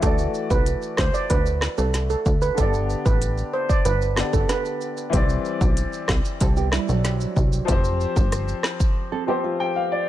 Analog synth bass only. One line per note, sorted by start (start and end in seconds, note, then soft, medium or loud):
0.03 0.27 D2 loud
0.50 0.75 C2 loud
0.98 1.11 D2 medium
1.30 1.68 D2 loud
1.78 2.15 C2 medium
2.26 2.51 D2 medium
2.58 2.95 G1 loud
3.06 3.43 A1 medium
3.85 4.23 G1 loud
4.33 4.46 G1 medium
5.13 5.38 C2 loud
5.61 5.86 B1 medium
6.09 6.21 C2 medium
6.41 6.78 C2 loud
6.89 7.26 B1 medium
7.36 7.61 C2 medium
7.68 8.06 F1 loud
8.16 8.54 G1 loud